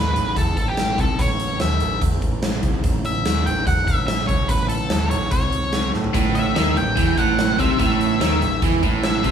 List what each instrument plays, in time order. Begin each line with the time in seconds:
Already playing: picked electric bass D#2, lead electric guitar B4
0.16 picked electric bass A1, closed hi-hat
0.36 picked electric bass E2, lead electric guitar A4, kick, closed hi-hat
0.57 picked electric bass A1, kick, closed hi-hat
0.68 lead electric guitar G4
0.77 snare, closed hi-hat
0.98 picked electric bass C2, lead electric guitar A4, kick, closed hi-hat
1.19 picked electric bass A1, lead electric guitar C#5, kick, closed hi-hat
1.40 closed hi-hat
1.60 picked electric bass D#2, lead electric guitar E5, snare, closed hi-hat
1.80 picked electric bass A1, closed hi-hat
2.01 picked electric bass E2, kick, closed hi-hat
2.22 picked electric bass A1, kick, closed hi-hat
2.42 snare, closed hi-hat
2.53 snare
2.63 picked electric bass C2, kick, closed hi-hat
2.84 picked electric bass A1, kick, closed hi-hat
3.05 lead electric guitar E5, closed hi-hat
3.25 picked electric bass D#2, snare, closed hi-hat
3.46 picked electric bass A1, lead electric guitar G5, closed hi-hat
3.67 picked electric bass E2, lead electric guitar F#5, kick, closed hi-hat
3.87 picked electric bass A1, lead electric guitar E5, kick, closed hi-hat
4.07 lead electric guitar E5, snare, closed hi-hat
4.19 snare
4.27 picked electric bass C2, lead electric guitar C#5, kick, closed hi-hat
4.48 picked electric bass A1, lead electric guitar B4, kick, closed hi-hat
4.69 lead electric guitar A4, closed hi-hat
4.90 picked electric bass D#2, snare, closed hi-hat
5.10 picked electric bass A1, lead electric guitar C#5, closed hi-hat
5.31 picked electric bass C2, lead electric guitar C#5, kick, closed hi-hat
5.52 closed hi-hat
5.73 snare, closed hi-hat
5.94 picked electric bass A2, snare
6.04 floor tom
6.14 picked electric bass A1, overdriven electric guitar A2, kick, closed hi-hat
6.35 lead electric guitar E5, closed hi-hat
6.56 picked electric bass D#2, overdriven electric guitar D#3, snare, closed hi-hat
6.77 picked electric bass A1, overdriven electric guitar A2, lead electric guitar G5, closed hi-hat
6.96 picked electric bass E2, overdriven electric guitar E3, kick, closed hi-hat
7.18 picked electric bass A1, overdriven electric guitar A2, lead electric guitar F#5, kick, closed hi-hat
7.39 snare, closed hi-hat
7.59 picked electric bass C2, overdriven electric guitar C3, lead electric guitar E5, kick, closed hi-hat
7.79 picked electric bass A1, overdriven electric guitar A2, lead electric guitar E5, kick, closed hi-hat
8.01 closed hi-hat
8.21 picked electric bass D#2, overdriven electric guitar D#3, lead electric guitar E5, snare, closed hi-hat
8.42 picked electric bass A1, overdriven electric guitar A2, closed hi-hat
8.62 picked electric bass E2, overdriven electric guitar E3, kick, closed hi-hat
8.83 picked electric bass A1, overdriven electric guitar A2, kick, closed hi-hat
9.03 lead electric guitar E5, snare, closed hi-hat
9.24 picked electric bass C2, overdriven electric guitar C3, kick, closed hi-hat